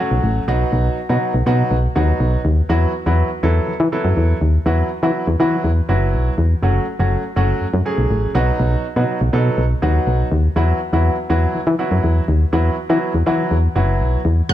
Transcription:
0.00 F#3 A3 C#4 F#4
0.11 B1
0.24 A1
0.48 B1 F#3 B3 D#4 F#4
0.73 B1
1.09 B2 F#3 B3 D#4 F#4
1.34 B1
1.46 B2 F#3 B3 D#4 F#4
1.71 B1
1.95 D#2 F#3 B3 D#4 F#4
2.20 B1
2.45 D#2
2.69 E2 F#3 B3 E4 F#4
3.06 E2 F#3 B3 E4 F#4
3.43 E2 F#3 B3 E4 A4
3.68 E3
3.80 E3
3.92 F#3 B3 E4 A4
4.05 F#2
4.17 E2
4.41 D#2
4.66 E2 F#3 B3 E4 F#4
5.03 E3 F#3 B3 E4 F#4
5.27 E2
5.40 E3 F#3 B3 E4 F#4
5.64 E2
5.89 F#1 F#3 B3 E4 F#4
6.14 B1
6.38 E2
6.63 F#1 F#3 A3 C#4 F#4
6.99 F#1 F#3 A3 C#4 F#4
7.36 F#1 F#3 A3 C#4 F#4
7.61 F#2
7.74 F#2
7.85 F#3 A3 C#4 G#4
7.98 B1
8.10 A1
8.35 B1 F#3 B3 D#4 F#4
8.60 B1
8.96 B2 F#3 B3 D#4 F#4
9.21 B1
9.33 B2 F#3 B3 D#4 A4
9.58 B1
9.82 D#2 F#3 B3 D#4 F#4
10.07 B1
10.32 D#2
10.56 E2 F#3 B3 E4 F#4
10.93 E2 F#3 B3 E4 F#4
11.30 E2 F#3 B3 E4 F#4
11.54 E3
11.67 E3
11.79 F#3 B3 E4 F#4
11.91 F#2
12.04 E2
12.28 D#2
12.53 E2 F#3 B3 E4 F#4
12.89 E3 F#3 B3 E4 F#4
13.14 E2
13.26 E3 F#3 B3 E4 F#4
13.51 E2
13.75 F#1 F#3 B3 E4 F#4
14.00 B1
14.25 E2
14.49 F#1 F#3 A3 C#4 F#4 F#6

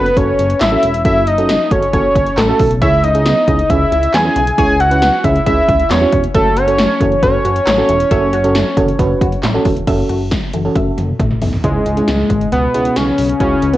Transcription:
Already playing: F#1 B4
0.06 closed hi-hat
0.17 F#1 C#4 F#4 A4 C#5, kick, closed hi-hat
0.39 F#1, closed hi-hat
0.50 closed hi-hat
0.61 A1 E5, snare, clap, closed hi-hat
0.72 C#4 F#4 A4
0.83 E1, closed hi-hat
0.94 closed hi-hat
1.05 F#1 C#4 F#4 A4 E5, kick, closed hi-hat
1.27 D#5, closed hi-hat
1.38 C#4 F#4 A4, closed hi-hat
1.49 snare, closed hi-hat
1.71 F#1 C#4 F#4 A4 C#5, kick, closed hi-hat
1.82 closed hi-hat
1.93 F#1 C#4 F#4 A4 C#5, kick, closed hi-hat
2.15 F#1, kick, closed hi-hat
2.26 closed hi-hat
2.37 A1 A4, snare, clap, closed hi-hat
2.49 C#4 F#4 A4
2.59 B1, kick, open hi-hat
2.71 closed hi-hat
2.81 C#2 C#4 E4 G#4 C#5 E5, kick, closed hi-hat
3.04 E4 D#5, closed hi-hat
3.15 C#4 E4 G#4, closed hi-hat
3.26 B3, snare, closed hi-hat
3.48 C#2 C#3 C#4 E4 G#4, kick, closed hi-hat
3.59 closed hi-hat
3.70 C#2 C#4 E4 G#4 E5, kick, closed hi-hat
3.92 C#2 E4, closed hi-hat
4.03 closed hi-hat
4.14 E2 B3 G#5, snare, clap, closed hi-hat
4.25 C#4 E4 G#4
4.36 B1 C#3, closed hi-hat
4.47 closed hi-hat
4.58 C#2 C#4 E4 G#4 C#5 G#5, kick, closed hi-hat
4.80 E4 F#5, closed hi-hat
4.91 C#4 E4 B4, closed hi-hat
5.02 B3, snare, closed hi-hat
5.24 C#2 C#3 C#4 E4 G#4 E5, kick, closed hi-hat
5.35 closed hi-hat
5.46 C#2 C#4 E4 G#4 E5, kick, closed hi-hat
5.68 C#2 E4, kick, closed hi-hat
5.79 closed hi-hat
5.90 E2 B3 C#5, snare, clap, closed hi-hat
6.01 C#4 E4 F#4
6.12 E1 C#3, kick, closed hi-hat
6.24 closed hi-hat
6.35 F#1 C#4 F#4 A4 E5, kick, closed hi-hat
6.57 F#4 C#5, closed hi-hat
6.68 C#4 F#4 A4, closed hi-hat
6.78 A3, snare, closed hi-hat
7.01 F#1 E3 C#4 F#4 A4, kick, closed hi-hat
7.12 closed hi-hat
7.23 F#1 C#4 F#4 A4 C#5, kick, closed hi-hat
7.45 F#1 F#4, closed hi-hat
7.56 closed hi-hat
7.67 A1 A3, snare, clap, closed hi-hat
7.78 C#4 F#4 A4
7.89 E1 E3, closed hi-hat
8.00 closed hi-hat
8.11 F#1 C#4 F#4 A4 E5, kick, closed hi-hat
8.33 F#4, closed hi-hat
8.44 C#4 F#4 A4, closed hi-hat
8.55 A3, snare, closed hi-hat
8.77 F#1 E3 C#4 F#4 A4, kick, closed hi-hat
8.88 closed hi-hat
8.99 F#1 C#4 F#4 B4, kick, closed hi-hat
9.21 F#1 F#4, kick, closed hi-hat
9.32 closed hi-hat
9.43 A1 A3, snare, clap, closed hi-hat
9.54 C#4 F#4 A4
9.65 E1 E3, kick, open hi-hat
9.77 closed hi-hat
9.87 F#1 C#4 F#4 A4 E5, kick, closed hi-hat, crash
10.09 F#1 F#4, closed hi-hat
10.31 kick, snare, closed hi-hat
10.53 F#1 E3 F#4 A4, closed hi-hat
10.65 C#4 F#4 A4
10.76 F#1 E5, kick, closed hi-hat, high tom
10.98 F#1, closed hi-hat, mid tom
11.20 A1 A3, kick, closed hi-hat, mid tom
11.31 mid tom
11.42 B1 E3, floor tom, open hi-hat
11.53 floor tom
11.64 C#2 G#3 C#4 E4 G#4, kick, closed hi-hat
11.86 C#2, closed hi-hat
11.97 C#4 E4 G#4, closed hi-hat
12.08 C#2, snare, closed hi-hat
12.30 G#1, kick, closed hi-hat
12.41 closed hi-hat
12.52 C#2 B3, closed hi-hat
12.74 C#2 B3 C#4 E4 G#4, closed hi-hat
12.85 closed hi-hat
12.96 B1 C#4, snare, closed hi-hat
13.18 B1, open hi-hat
13.30 closed hi-hat
13.40 C#2 C#4 E4 F#4, kick, closed hi-hat
13.62 C#2, closed hi-hat
13.74 B3 C#4 E4 B4, closed hi-hat

